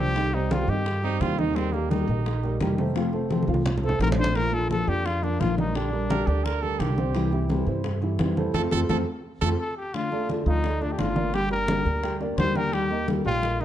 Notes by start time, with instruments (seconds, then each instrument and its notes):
Already playing: upright bass C2, nylon-string guitar F3 A#3 D4 F4
0.00 grand piano G3 G4 C5, trumpet G4
0.15 nylon-string guitar C3 D#3 G3 C4 G4, grand piano D#3 D#4, high bongo, high conga
0.33 grand piano G3 G4 C5, nylon-string guitar G3 C4 G4, trumpet D#4, high conga
0.50 nylon-string guitar C3 D#3 G3 C4 G4, grand piano G3 G4 C5, trumpet F4, high bongo, high conga
0.68 upright bass G2, grand piano D#3 D#4 D#5, nylon-string guitar G3 C4, trumpet G4, high bongo, high conga
0.85 muted nylon-string guitar stroke, high bongo, high conga
1.03 grand piano G3 G4 C5, nylon-string guitar G3 C4 G4, trumpet D#4, high bongo, high conga
1.20 upright bass D#2, nylon-string guitar C3 D#3 G3 C4 G4, trumpet F4, high bongo, low bongo, high conga
1.39 grand piano D#3 D#4 D#5, trumpet D#4, high bongo, high conga
1.55 nylon-string guitar D#3 G3 A#3 D#4 G4, grand piano G3 G4 A#4, trumpet C4, high bongo, high conga
1.73 grand piano G3 G4 A#4, trumpet A#3, nylon-string guitar A#3 D#4 G4, high bongo, high conga
1.90 nylon-string guitar D#3 G3 A#3 D#4 G4, trumpet D#4, high bongo, high conga
2.08 upright bass A#1, grand piano D#3 D#4 D#5, nylon-string guitar A#3 D#4 G4, high bongo
2.26 muted nylon-string guitar stroke, high bongo, high conga
2.43 grand piano G3 G4 A#4, nylon-string guitar A#3 D#4 G4, high bongo, high conga
2.60 upright bass F1, nylon-string guitar D#3 G3 A#3 D#4 G4, high bongo, low bongo, high conga
2.78 grand piano A3 A4 C5, high conga
2.95 nylon-string guitar C3 F3 A3 C4 F4, grand piano F3 F4 F5, high bongo, high conga
3.12 grand piano A3 A4 C5, nylon-string guitar A3 C4 F4, high conga
3.29 nylon-string guitar C3 F3 A3 C4 F4, grand piano A3 A4 C5, high bongo, high conga
3.42 high conga
3.47 upright bass C2, grand piano F3 F4 F5, nylon-string guitar A3 C4 F4, high bongo
3.54 high conga
3.65 muted nylon-string guitar stroke, high bongo, low conga
3.78 low conga
3.83 grand piano A3 A4 C5, nylon-string guitar A3 C4 F4, trumpet A4, high bongo
3.89 low conga
4.00 upright bass A#1, nylon-string guitar C3 F3 A3 C4 F4, trumpet A#4, high bongo, low bongo, low conga
4.12 low conga
4.18 grand piano D3 D4 D5, trumpet C5, high bongo
4.24 low conga
4.35 nylon-string guitar F3 A#3 D4 F4, grand piano F3 F4 A#4, trumpet A#4, high bongo, high conga
4.52 grand piano F3 F4 A#4, nylon-string guitar A#3 D4 F4, trumpet A4, high bongo, high conga
4.69 nylon-string guitar F3 A#3 D4 F4, trumpet A4, high bongo, high conga
4.87 upright bass F2, grand piano D3 D4 D5, nylon-string guitar A#3 D4 F4, trumpet G4, high bongo
5.05 trumpet F4, muted nylon-string guitar stroke, high bongo, high conga
5.22 grand piano F3 F4 A#4, nylon-string guitar A#3 D4 F4, trumpet D4, high bongo, high conga
5.39 upright bass A#1, nylon-string guitar F3 A#3 D4 F4, trumpet F4, high bongo, low bongo, high conga
5.57 grand piano G3 G4 A#4, trumpet D#4, high conga
5.74 nylon-string guitar D3 G3 D4 G4, grand piano D3 D4 D5, trumpet D4, high bongo, high conga
5.92 grand piano G3 G4 A#4, nylon-string guitar G3 D4 G4, high conga
6.10 nylon-string guitar D3 G3 D4 G4, grand piano G3 G4, trumpet A#4, high bongo, high conga
6.27 upright bass D2, grand piano D3 D4 D5, nylon-string guitar G3 D4 G4, trumpet G4, high bongo, high conga
6.44 trumpet A#4, muted nylon-string guitar stroke, high bongo, high conga
6.62 grand piano G3 G4 A#4, nylon-string guitar G3 D4 G4, trumpet A4, high bongo, high conga
6.79 upright bass C2, nylon-string guitar D3 G3 D4 G4, trumpet G4, high bongo, low bongo, high conga
6.97 grand piano C3 C4 C5, high bongo, high conga
7.14 nylon-string guitar C3 E3 G3 C4 E4, grand piano E3 E4 G4, high bongo, high conga
7.31 grand piano E3 E4 G4, nylon-string guitar G3 C4 E4, high bongo, high conga
7.49 nylon-string guitar C3 E3 G3 C4 E4, high bongo, high conga
7.67 upright bass G2, grand piano C3 C4 C5, nylon-string guitar G3 C4 E4, high bongo
7.84 muted nylon-string guitar stroke, high bongo, high conga
8.01 grand piano E3 E4 G4, nylon-string guitar G3 C4 E4, high bongo, high conga
8.19 upright bass F2, nylon-string guitar C3 E3 G3 C4 E4, high bongo, low bongo, high conga
8.37 grand piano A3 A4 C5, high conga
8.54 upright bass F2, nylon-string guitar A3 C4 F4, grand piano C4 F4 A4, trumpet A4, high bongo, high conga
8.71 upright bass F2, nylon-string guitar A3 C4 F4, grand piano C4 F4 A4, trumpet A4, high bongo, high conga
8.89 upright bass F2, nylon-string guitar A3 C4 F4, grand piano C4 F4 A4, trumpet A4, high bongo, high conga
9.41 upright bass F2, nylon-string guitar A3 C4 F4, grand piano C4 F4 A4, trumpet A4, high bongo, high conga
9.59 trumpet A4
9.77 trumpet G4
9.94 nylon-string guitar D3 A3 D4 F4, trumpet F4, high bongo, high conga
10.11 grand piano A3 A4 D5, nylon-string guitar A3 D4 F4, high bongo, high conga
10.28 nylon-string guitar D3 A3 D4 F4, high bongo, high conga
10.46 upright bass D2, grand piano F3 F4 F5, nylon-string guitar A3 D4 F4, trumpet D#4, high bongo
10.63 grand piano A3 A4 D5, muted nylon-string guitar stroke, high bongo, high conga
10.81 grand piano A3 A4 D5, nylon-string guitar A3 D4 F4, trumpet D4, high bongo, high conga
10.92 trumpet G4
10.98 upright bass G1, nylon-string guitar D3 A3 D4 F4, trumpet F4, high bongo, low bongo, high conga
11.16 grand piano A#3 A#4 D5, high conga
11.33 nylon-string guitar D3 G3 A#3 D4 G4, grand piano G3 G4 G5, trumpet G4, high bongo, high conga
11.51 nylon-string guitar A#3 D4 G4, trumpet A#4, high conga
11.68 nylon-string guitar D3 G3 A#3 D4 G4, grand piano A#3 A#4 D5, high bongo, high conga
11.85 upright bass D2, nylon-string guitar A#3 D4 G4, high bongo, high conga
12.03 grand piano G3 G4 G5, muted nylon-string guitar stroke, high bongo, high conga
12.20 grand piano A#3 A#4 D5, nylon-string guitar A#3 D4 G4, high bongo, high conga
12.37 upright bass D#2, nylon-string guitar D3 G3 A#3 D4 G4, trumpet C5, high bongo, low bongo, high conga
12.55 grand piano G3 G4 G5, trumpet A#4, high bongo, high conga
12.72 nylon-string guitar D#3 G3 A#3 D#4 G4, trumpet G4, high bongo, high conga
12.90 grand piano A#3 A#4 D#5, nylon-string guitar A#3 D#4, high bongo, high conga
13.07 nylon-string guitar D#3 G3 A#3 D#4 G4, high bongo, high conga
13.25 upright bass A#1, grand piano G3 G4 G5, nylon-string guitar A#3 D#4 G4, trumpet F4, high bongo
13.43 grand piano A#3 A#4 D#5, muted nylon-string guitar stroke, high bongo, high conga
13.60 grand piano A#3 A#4 D#5, trumpet D#4, nylon-string guitar D#4 G4, high bongo, high conga